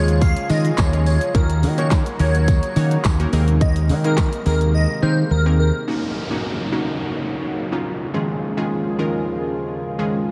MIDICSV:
0, 0, Header, 1, 7, 480
1, 0, Start_track
1, 0, Tempo, 566038
1, 1142, Time_signature, 4, 2, 24, 8
1, 8747, End_track
2, 0, Start_track
2, 0, Title_t, "Digital synth lead"
2, 0, Program_c, 0, 84
2, 184, Note_on_c, 0, 77, 100
2, 342, Note_off_c, 0, 77, 0
2, 423, Note_on_c, 0, 75, 85
2, 507, Note_off_c, 0, 75, 0
2, 662, Note_on_c, 0, 73, 82
2, 746, Note_off_c, 0, 73, 0
2, 903, Note_on_c, 0, 73, 82
2, 987, Note_off_c, 0, 73, 0
2, 1143, Note_on_c, 0, 70, 106
2, 1301, Note_off_c, 0, 70, 0
2, 1510, Note_on_c, 0, 73, 84
2, 1584, Note_off_c, 0, 73, 0
2, 1863, Note_on_c, 0, 73, 77
2, 2314, Note_off_c, 0, 73, 0
2, 3062, Note_on_c, 0, 75, 108
2, 3146, Note_off_c, 0, 75, 0
2, 3432, Note_on_c, 0, 70, 88
2, 3590, Note_off_c, 0, 70, 0
2, 3782, Note_on_c, 0, 70, 90
2, 3867, Note_off_c, 0, 70, 0
2, 4023, Note_on_c, 0, 75, 103
2, 4182, Note_off_c, 0, 75, 0
2, 4262, Note_on_c, 0, 72, 86
2, 4346, Note_off_c, 0, 72, 0
2, 4503, Note_on_c, 0, 70, 85
2, 4587, Note_off_c, 0, 70, 0
2, 4742, Note_on_c, 0, 70, 82
2, 4826, Note_off_c, 0, 70, 0
2, 8747, End_track
3, 0, Start_track
3, 0, Title_t, "Synth pluck"
3, 0, Program_c, 1, 84
3, 0, Note_on_c, 1, 56, 81
3, 0, Note_on_c, 1, 61, 75
3, 0, Note_on_c, 1, 65, 72
3, 0, Note_on_c, 1, 68, 75
3, 0, Note_on_c, 1, 73, 91
3, 237, Note_off_c, 1, 56, 0
3, 237, Note_off_c, 1, 61, 0
3, 238, Note_off_c, 1, 65, 0
3, 238, Note_off_c, 1, 68, 0
3, 239, Note_off_c, 1, 73, 0
3, 421, Note_on_c, 1, 56, 79
3, 422, Note_on_c, 1, 61, 74
3, 423, Note_on_c, 1, 65, 73
3, 424, Note_on_c, 1, 68, 73
3, 425, Note_on_c, 1, 70, 87
3, 642, Note_off_c, 1, 56, 0
3, 642, Note_off_c, 1, 61, 0
3, 643, Note_off_c, 1, 65, 0
3, 643, Note_off_c, 1, 68, 0
3, 644, Note_off_c, 1, 70, 0
3, 788, Note_on_c, 1, 56, 75
3, 789, Note_on_c, 1, 61, 70
3, 790, Note_on_c, 1, 65, 70
3, 791, Note_on_c, 1, 68, 69
3, 792, Note_on_c, 1, 73, 86
3, 1006, Note_off_c, 1, 56, 0
3, 1007, Note_off_c, 1, 61, 0
3, 1007, Note_off_c, 1, 65, 0
3, 1008, Note_off_c, 1, 68, 0
3, 1008, Note_off_c, 1, 73, 0
3, 1142, Note_on_c, 1, 58, 80
3, 1142, Note_on_c, 1, 61, 69
3, 1144, Note_on_c, 1, 63, 67
3, 1145, Note_on_c, 1, 66, 71
3, 1146, Note_on_c, 1, 70, 83
3, 1362, Note_off_c, 1, 58, 0
3, 1362, Note_off_c, 1, 61, 0
3, 1363, Note_off_c, 1, 63, 0
3, 1364, Note_off_c, 1, 66, 0
3, 1364, Note_off_c, 1, 70, 0
3, 1509, Note_on_c, 1, 58, 81
3, 1510, Note_on_c, 1, 61, 70
3, 1511, Note_on_c, 1, 63, 73
3, 1512, Note_on_c, 1, 66, 76
3, 1513, Note_on_c, 1, 70, 89
3, 1726, Note_off_c, 1, 58, 0
3, 1727, Note_off_c, 1, 61, 0
3, 1728, Note_off_c, 1, 63, 0
3, 1728, Note_off_c, 1, 66, 0
3, 1729, Note_off_c, 1, 70, 0
3, 1860, Note_on_c, 1, 58, 77
3, 1862, Note_on_c, 1, 61, 76
3, 1862, Note_on_c, 1, 63, 74
3, 1864, Note_on_c, 1, 66, 71
3, 1865, Note_on_c, 1, 70, 88
3, 2156, Note_off_c, 1, 58, 0
3, 2157, Note_off_c, 1, 61, 0
3, 2157, Note_off_c, 1, 63, 0
3, 2158, Note_off_c, 1, 66, 0
3, 2158, Note_off_c, 1, 70, 0
3, 2340, Note_on_c, 1, 58, 78
3, 2342, Note_on_c, 1, 61, 72
3, 2343, Note_on_c, 1, 63, 74
3, 2344, Note_on_c, 1, 66, 76
3, 2345, Note_on_c, 1, 73, 89
3, 2561, Note_off_c, 1, 58, 0
3, 2562, Note_off_c, 1, 61, 0
3, 2563, Note_off_c, 1, 63, 0
3, 2563, Note_off_c, 1, 66, 0
3, 2564, Note_off_c, 1, 73, 0
3, 2708, Note_on_c, 1, 58, 92
3, 2709, Note_on_c, 1, 61, 87
3, 2711, Note_on_c, 1, 63, 84
3, 2712, Note_on_c, 1, 66, 84
3, 2713, Note_on_c, 1, 70, 102
3, 2811, Note_off_c, 1, 58, 0
3, 2813, Note_off_c, 1, 63, 0
3, 2816, Note_off_c, 1, 70, 0
3, 2821, Note_on_c, 1, 58, 95
3, 2822, Note_off_c, 1, 61, 0
3, 2822, Note_on_c, 1, 60, 90
3, 2823, Note_off_c, 1, 66, 0
3, 2824, Note_on_c, 1, 63, 92
3, 2824, Note_on_c, 1, 68, 86
3, 2826, Note_on_c, 1, 70, 106
3, 3302, Note_off_c, 1, 58, 0
3, 3302, Note_off_c, 1, 60, 0
3, 3303, Note_off_c, 1, 63, 0
3, 3303, Note_off_c, 1, 68, 0
3, 3304, Note_off_c, 1, 70, 0
3, 3428, Note_on_c, 1, 58, 81
3, 3429, Note_on_c, 1, 60, 71
3, 3430, Note_on_c, 1, 63, 70
3, 3432, Note_on_c, 1, 68, 73
3, 3433, Note_on_c, 1, 70, 87
3, 3646, Note_off_c, 1, 58, 0
3, 3647, Note_off_c, 1, 60, 0
3, 3647, Note_off_c, 1, 63, 0
3, 3648, Note_off_c, 1, 68, 0
3, 3649, Note_off_c, 1, 70, 0
3, 3780, Note_on_c, 1, 58, 84
3, 3780, Note_on_c, 1, 60, 71
3, 3782, Note_on_c, 1, 63, 72
3, 3783, Note_on_c, 1, 68, 70
3, 3784, Note_on_c, 1, 70, 88
3, 4076, Note_off_c, 1, 58, 0
3, 4076, Note_off_c, 1, 60, 0
3, 4077, Note_off_c, 1, 63, 0
3, 4078, Note_off_c, 1, 68, 0
3, 4078, Note_off_c, 1, 70, 0
3, 4260, Note_on_c, 1, 58, 82
3, 4261, Note_on_c, 1, 60, 74
3, 4262, Note_on_c, 1, 63, 73
3, 4263, Note_on_c, 1, 68, 74
3, 4264, Note_on_c, 1, 70, 87
3, 4481, Note_off_c, 1, 58, 0
3, 4482, Note_off_c, 1, 60, 0
3, 4482, Note_off_c, 1, 63, 0
3, 4483, Note_off_c, 1, 68, 0
3, 4483, Note_off_c, 1, 70, 0
3, 4627, Note_on_c, 1, 58, 76
3, 4629, Note_on_c, 1, 60, 70
3, 4630, Note_on_c, 1, 63, 69
3, 4631, Note_on_c, 1, 68, 69
3, 4632, Note_on_c, 1, 70, 85
3, 4846, Note_off_c, 1, 58, 0
3, 4847, Note_off_c, 1, 60, 0
3, 4847, Note_off_c, 1, 63, 0
3, 4848, Note_off_c, 1, 68, 0
3, 4848, Note_off_c, 1, 70, 0
3, 4982, Note_on_c, 1, 58, 82
3, 4983, Note_on_c, 1, 61, 74
3, 4985, Note_on_c, 1, 63, 78
3, 4986, Note_on_c, 1, 66, 95
3, 5202, Note_off_c, 1, 58, 0
3, 5203, Note_off_c, 1, 61, 0
3, 5204, Note_off_c, 1, 63, 0
3, 5204, Note_off_c, 1, 66, 0
3, 5348, Note_on_c, 1, 58, 89
3, 5349, Note_on_c, 1, 61, 80
3, 5350, Note_on_c, 1, 63, 80
3, 5352, Note_on_c, 1, 66, 95
3, 5566, Note_off_c, 1, 58, 0
3, 5567, Note_off_c, 1, 61, 0
3, 5567, Note_off_c, 1, 63, 0
3, 5568, Note_off_c, 1, 66, 0
3, 5700, Note_on_c, 1, 58, 89
3, 5702, Note_on_c, 1, 61, 79
3, 5703, Note_on_c, 1, 63, 84
3, 5704, Note_on_c, 1, 66, 95
3, 6213, Note_off_c, 1, 58, 0
3, 6214, Note_off_c, 1, 61, 0
3, 6215, Note_off_c, 1, 63, 0
3, 6215, Note_off_c, 1, 66, 0
3, 6547, Note_on_c, 1, 58, 81
3, 6549, Note_on_c, 1, 61, 79
3, 6551, Note_on_c, 1, 63, 81
3, 6552, Note_on_c, 1, 65, 91
3, 6766, Note_off_c, 1, 58, 0
3, 6767, Note_off_c, 1, 61, 0
3, 6768, Note_off_c, 1, 63, 0
3, 6768, Note_off_c, 1, 65, 0
3, 6900, Note_on_c, 1, 51, 83
3, 6901, Note_on_c, 1, 56, 78
3, 6902, Note_on_c, 1, 61, 77
3, 6904, Note_on_c, 1, 65, 78
3, 6904, Note_on_c, 1, 68, 92
3, 7121, Note_off_c, 1, 51, 0
3, 7122, Note_off_c, 1, 56, 0
3, 7122, Note_off_c, 1, 61, 0
3, 7123, Note_off_c, 1, 65, 0
3, 7123, Note_off_c, 1, 68, 0
3, 7269, Note_on_c, 1, 51, 86
3, 7270, Note_on_c, 1, 56, 81
3, 7271, Note_on_c, 1, 61, 80
3, 7272, Note_on_c, 1, 65, 80
3, 7273, Note_on_c, 1, 68, 97
3, 7487, Note_off_c, 1, 51, 0
3, 7487, Note_off_c, 1, 56, 0
3, 7488, Note_off_c, 1, 61, 0
3, 7488, Note_off_c, 1, 65, 0
3, 7489, Note_off_c, 1, 68, 0
3, 7621, Note_on_c, 1, 51, 90
3, 7622, Note_on_c, 1, 56, 78
3, 7623, Note_on_c, 1, 61, 80
3, 7624, Note_on_c, 1, 65, 79
3, 7625, Note_on_c, 1, 70, 100
3, 8134, Note_off_c, 1, 51, 0
3, 8134, Note_off_c, 1, 56, 0
3, 8135, Note_off_c, 1, 61, 0
3, 8135, Note_off_c, 1, 65, 0
3, 8136, Note_off_c, 1, 70, 0
3, 8468, Note_on_c, 1, 51, 83
3, 8469, Note_on_c, 1, 56, 80
3, 8470, Note_on_c, 1, 61, 79
3, 8471, Note_on_c, 1, 65, 78
3, 8472, Note_on_c, 1, 68, 91
3, 8686, Note_off_c, 1, 51, 0
3, 8687, Note_off_c, 1, 56, 0
3, 8687, Note_off_c, 1, 61, 0
3, 8688, Note_off_c, 1, 65, 0
3, 8688, Note_off_c, 1, 68, 0
3, 8747, End_track
4, 0, Start_track
4, 0, Title_t, "Supersaw synth"
4, 0, Program_c, 2, 81
4, 0, Note_on_c, 2, 49, 86
4, 0, Note_on_c, 2, 53, 74
4, 0, Note_on_c, 2, 56, 77
4, 0, Note_on_c, 2, 65, 77
4, 0, Note_on_c, 2, 68, 94
4, 1123, Note_off_c, 2, 49, 0
4, 1123, Note_off_c, 2, 53, 0
4, 1123, Note_off_c, 2, 56, 0
4, 1123, Note_off_c, 2, 65, 0
4, 1123, Note_off_c, 2, 68, 0
4, 1142, Note_on_c, 2, 54, 77
4, 1142, Note_on_c, 2, 66, 90
4, 1143, Note_on_c, 2, 49, 82
4, 1143, Note_on_c, 2, 58, 75
4, 1143, Note_on_c, 2, 63, 74
4, 2805, Note_off_c, 2, 66, 0
4, 2806, Note_off_c, 2, 49, 0
4, 2806, Note_off_c, 2, 54, 0
4, 2823, Note_on_c, 2, 56, 76
4, 2824, Note_on_c, 2, 48, 81
4, 2824, Note_on_c, 2, 51, 76
4, 4949, Note_off_c, 2, 58, 0
4, 4949, Note_off_c, 2, 63, 0
4, 4961, Note_off_c, 2, 48, 0
4, 4961, Note_off_c, 2, 56, 0
4, 4962, Note_off_c, 2, 51, 0
4, 4982, Note_on_c, 2, 63, 69
4, 4983, Note_on_c, 2, 49, 77
4, 4983, Note_on_c, 2, 54, 70
4, 4983, Note_on_c, 2, 58, 68
4, 4983, Note_on_c, 2, 66, 83
4, 6883, Note_off_c, 2, 54, 0
4, 6883, Note_off_c, 2, 58, 0
4, 6883, Note_off_c, 2, 63, 0
4, 6883, Note_off_c, 2, 66, 0
4, 6903, Note_on_c, 2, 53, 68
4, 6903, Note_on_c, 2, 68, 82
4, 6904, Note_on_c, 2, 39, 74
4, 6904, Note_on_c, 2, 56, 68
4, 6904, Note_on_c, 2, 65, 70
4, 8747, Note_off_c, 2, 39, 0
4, 8747, Note_off_c, 2, 49, 0
4, 8747, Note_off_c, 2, 53, 0
4, 8747, Note_off_c, 2, 56, 0
4, 8747, Note_off_c, 2, 65, 0
4, 8747, Note_off_c, 2, 68, 0
4, 8747, End_track
5, 0, Start_track
5, 0, Title_t, "Fingered electric bass"
5, 0, Program_c, 3, 33
5, 0, Note_on_c, 3, 39, 96
5, 273, Note_off_c, 3, 39, 0
5, 422, Note_on_c, 3, 51, 104
5, 587, Note_off_c, 3, 51, 0
5, 664, Note_on_c, 3, 39, 111
5, 993, Note_off_c, 3, 39, 0
5, 1142, Note_on_c, 3, 39, 116
5, 1381, Note_on_c, 3, 51, 93
5, 1394, Note_off_c, 3, 39, 0
5, 1712, Note_off_c, 3, 51, 0
5, 1862, Note_on_c, 3, 39, 94
5, 2192, Note_off_c, 3, 39, 0
5, 2341, Note_on_c, 3, 51, 102
5, 2507, Note_off_c, 3, 51, 0
5, 2584, Note_on_c, 3, 39, 112
5, 2749, Note_off_c, 3, 39, 0
5, 2821, Note_on_c, 3, 39, 101
5, 3301, Note_on_c, 3, 51, 94
5, 3314, Note_off_c, 3, 39, 0
5, 3632, Note_off_c, 3, 51, 0
5, 3782, Note_on_c, 3, 39, 95
5, 4112, Note_off_c, 3, 39, 0
5, 4261, Note_on_c, 3, 51, 107
5, 4427, Note_off_c, 3, 51, 0
5, 4501, Note_on_c, 3, 39, 109
5, 4832, Note_off_c, 3, 39, 0
5, 8747, End_track
6, 0, Start_track
6, 0, Title_t, "Downlifter"
6, 0, Program_c, 4, 103
6, 4982, Note_on_c, 4, 60, 79
6, 8747, Note_off_c, 4, 60, 0
6, 8747, End_track
7, 0, Start_track
7, 0, Title_t, "Drums"
7, 69, Note_on_c, 9, 42, 56
7, 69, Note_on_c, 9, 82, 83
7, 154, Note_off_c, 9, 42, 0
7, 154, Note_off_c, 9, 82, 0
7, 182, Note_on_c, 9, 42, 81
7, 182, Note_on_c, 9, 82, 82
7, 183, Note_on_c, 9, 36, 106
7, 185, Note_on_c, 9, 54, 54
7, 267, Note_off_c, 9, 42, 0
7, 267, Note_off_c, 9, 82, 0
7, 268, Note_off_c, 9, 36, 0
7, 270, Note_off_c, 9, 54, 0
7, 309, Note_on_c, 9, 42, 58
7, 309, Note_on_c, 9, 82, 60
7, 394, Note_off_c, 9, 42, 0
7, 394, Note_off_c, 9, 82, 0
7, 421, Note_on_c, 9, 46, 80
7, 421, Note_on_c, 9, 82, 60
7, 423, Note_on_c, 9, 54, 54
7, 505, Note_off_c, 9, 46, 0
7, 505, Note_off_c, 9, 82, 0
7, 508, Note_off_c, 9, 54, 0
7, 549, Note_on_c, 9, 42, 57
7, 549, Note_on_c, 9, 82, 84
7, 634, Note_off_c, 9, 42, 0
7, 634, Note_off_c, 9, 82, 0
7, 658, Note_on_c, 9, 42, 71
7, 658, Note_on_c, 9, 82, 72
7, 661, Note_on_c, 9, 54, 89
7, 662, Note_on_c, 9, 39, 109
7, 664, Note_on_c, 9, 36, 116
7, 664, Note_on_c, 9, 38, 89
7, 743, Note_off_c, 9, 42, 0
7, 743, Note_off_c, 9, 82, 0
7, 746, Note_off_c, 9, 39, 0
7, 746, Note_off_c, 9, 54, 0
7, 748, Note_off_c, 9, 36, 0
7, 749, Note_off_c, 9, 38, 0
7, 792, Note_on_c, 9, 42, 54
7, 792, Note_on_c, 9, 82, 52
7, 876, Note_off_c, 9, 42, 0
7, 876, Note_off_c, 9, 82, 0
7, 902, Note_on_c, 9, 46, 79
7, 902, Note_on_c, 9, 82, 59
7, 903, Note_on_c, 9, 54, 48
7, 987, Note_off_c, 9, 46, 0
7, 987, Note_off_c, 9, 82, 0
7, 988, Note_off_c, 9, 54, 0
7, 1028, Note_on_c, 9, 42, 59
7, 1028, Note_on_c, 9, 82, 86
7, 1113, Note_off_c, 9, 42, 0
7, 1113, Note_off_c, 9, 82, 0
7, 1142, Note_on_c, 9, 36, 127
7, 1142, Note_on_c, 9, 54, 33
7, 1143, Note_on_c, 9, 42, 82
7, 1143, Note_on_c, 9, 82, 81
7, 1227, Note_off_c, 9, 36, 0
7, 1227, Note_off_c, 9, 42, 0
7, 1227, Note_off_c, 9, 54, 0
7, 1227, Note_off_c, 9, 82, 0
7, 1269, Note_on_c, 9, 42, 58
7, 1269, Note_on_c, 9, 82, 59
7, 1353, Note_off_c, 9, 42, 0
7, 1353, Note_off_c, 9, 82, 0
7, 1383, Note_on_c, 9, 46, 83
7, 1383, Note_on_c, 9, 82, 61
7, 1384, Note_on_c, 9, 54, 47
7, 1468, Note_off_c, 9, 46, 0
7, 1468, Note_off_c, 9, 82, 0
7, 1469, Note_off_c, 9, 54, 0
7, 1509, Note_on_c, 9, 42, 58
7, 1509, Note_on_c, 9, 82, 80
7, 1594, Note_off_c, 9, 42, 0
7, 1594, Note_off_c, 9, 82, 0
7, 1622, Note_on_c, 9, 36, 126
7, 1622, Note_on_c, 9, 39, 127
7, 1622, Note_on_c, 9, 42, 73
7, 1622, Note_on_c, 9, 82, 70
7, 1624, Note_on_c, 9, 54, 81
7, 1625, Note_on_c, 9, 38, 106
7, 1707, Note_off_c, 9, 36, 0
7, 1707, Note_off_c, 9, 39, 0
7, 1707, Note_off_c, 9, 42, 0
7, 1707, Note_off_c, 9, 82, 0
7, 1709, Note_off_c, 9, 38, 0
7, 1709, Note_off_c, 9, 54, 0
7, 1749, Note_on_c, 9, 42, 63
7, 1749, Note_on_c, 9, 82, 64
7, 1834, Note_off_c, 9, 42, 0
7, 1834, Note_off_c, 9, 82, 0
7, 1861, Note_on_c, 9, 46, 84
7, 1861, Note_on_c, 9, 82, 61
7, 1946, Note_off_c, 9, 46, 0
7, 1946, Note_off_c, 9, 82, 0
7, 1990, Note_on_c, 9, 42, 60
7, 1990, Note_on_c, 9, 82, 83
7, 2075, Note_off_c, 9, 42, 0
7, 2075, Note_off_c, 9, 82, 0
7, 2102, Note_on_c, 9, 42, 80
7, 2102, Note_on_c, 9, 82, 80
7, 2104, Note_on_c, 9, 36, 110
7, 2105, Note_on_c, 9, 54, 52
7, 2187, Note_off_c, 9, 42, 0
7, 2187, Note_off_c, 9, 82, 0
7, 2188, Note_off_c, 9, 36, 0
7, 2190, Note_off_c, 9, 54, 0
7, 2229, Note_on_c, 9, 42, 57
7, 2229, Note_on_c, 9, 82, 61
7, 2314, Note_off_c, 9, 42, 0
7, 2314, Note_off_c, 9, 82, 0
7, 2342, Note_on_c, 9, 46, 85
7, 2342, Note_on_c, 9, 82, 59
7, 2343, Note_on_c, 9, 54, 55
7, 2427, Note_off_c, 9, 46, 0
7, 2427, Note_off_c, 9, 82, 0
7, 2428, Note_off_c, 9, 54, 0
7, 2470, Note_on_c, 9, 42, 59
7, 2470, Note_on_c, 9, 82, 85
7, 2555, Note_off_c, 9, 42, 0
7, 2555, Note_off_c, 9, 82, 0
7, 2580, Note_on_c, 9, 42, 69
7, 2580, Note_on_c, 9, 82, 71
7, 2582, Note_on_c, 9, 54, 88
7, 2583, Note_on_c, 9, 39, 110
7, 2584, Note_on_c, 9, 36, 118
7, 2586, Note_on_c, 9, 38, 88
7, 2665, Note_off_c, 9, 42, 0
7, 2665, Note_off_c, 9, 82, 0
7, 2667, Note_off_c, 9, 54, 0
7, 2668, Note_off_c, 9, 39, 0
7, 2669, Note_off_c, 9, 36, 0
7, 2671, Note_off_c, 9, 38, 0
7, 2712, Note_on_c, 9, 42, 53
7, 2712, Note_on_c, 9, 82, 54
7, 2797, Note_off_c, 9, 42, 0
7, 2797, Note_off_c, 9, 82, 0
7, 2822, Note_on_c, 9, 46, 81
7, 2822, Note_on_c, 9, 82, 61
7, 2823, Note_on_c, 9, 54, 49
7, 2907, Note_off_c, 9, 46, 0
7, 2907, Note_off_c, 9, 82, 0
7, 2908, Note_off_c, 9, 54, 0
7, 2949, Note_on_c, 9, 42, 62
7, 2949, Note_on_c, 9, 82, 87
7, 3034, Note_off_c, 9, 42, 0
7, 3034, Note_off_c, 9, 82, 0
7, 3062, Note_on_c, 9, 36, 127
7, 3063, Note_on_c, 9, 42, 81
7, 3063, Note_on_c, 9, 82, 79
7, 3147, Note_off_c, 9, 36, 0
7, 3147, Note_off_c, 9, 42, 0
7, 3147, Note_off_c, 9, 82, 0
7, 3188, Note_on_c, 9, 42, 59
7, 3188, Note_on_c, 9, 82, 59
7, 3273, Note_off_c, 9, 42, 0
7, 3273, Note_off_c, 9, 82, 0
7, 3302, Note_on_c, 9, 54, 44
7, 3303, Note_on_c, 9, 46, 82
7, 3303, Note_on_c, 9, 82, 56
7, 3387, Note_off_c, 9, 54, 0
7, 3388, Note_off_c, 9, 46, 0
7, 3388, Note_off_c, 9, 82, 0
7, 3430, Note_on_c, 9, 42, 56
7, 3430, Note_on_c, 9, 82, 81
7, 3514, Note_off_c, 9, 42, 0
7, 3514, Note_off_c, 9, 82, 0
7, 3542, Note_on_c, 9, 39, 124
7, 3542, Note_on_c, 9, 42, 69
7, 3542, Note_on_c, 9, 82, 67
7, 3543, Note_on_c, 9, 36, 127
7, 3543, Note_on_c, 9, 54, 83
7, 3544, Note_on_c, 9, 38, 103
7, 3626, Note_off_c, 9, 39, 0
7, 3627, Note_off_c, 9, 36, 0
7, 3627, Note_off_c, 9, 42, 0
7, 3627, Note_off_c, 9, 82, 0
7, 3628, Note_off_c, 9, 54, 0
7, 3629, Note_off_c, 9, 38, 0
7, 3669, Note_on_c, 9, 42, 63
7, 3669, Note_on_c, 9, 82, 61
7, 3754, Note_off_c, 9, 42, 0
7, 3754, Note_off_c, 9, 82, 0
7, 3781, Note_on_c, 9, 46, 81
7, 3781, Note_on_c, 9, 82, 59
7, 3784, Note_on_c, 9, 54, 32
7, 3866, Note_off_c, 9, 46, 0
7, 3866, Note_off_c, 9, 82, 0
7, 3869, Note_off_c, 9, 54, 0
7, 3910, Note_on_c, 9, 42, 58
7, 3910, Note_on_c, 9, 82, 81
7, 3995, Note_off_c, 9, 42, 0
7, 3995, Note_off_c, 9, 82, 0
7, 8747, End_track
0, 0, End_of_file